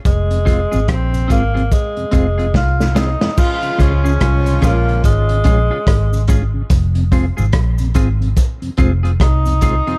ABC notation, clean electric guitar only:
X:1
M:4/4
L:1/16
Q:"Swing 16ths" 1/4=72
K:Db
V:1 name="Clean electric guitar"
z2 [CFA] [CFA] z2 [CFA] [CFA] z2 [CFA] [CFA] z2 [CFA] z | z2 [DFA] [DFA] z2 [DFA] z3 [DFA] [DFA] z2 [DFA] z | z2 [CFA] [CFA] z2 [CFA] z3 [CFA] [CFA] z2 [CFA] [CFA] |]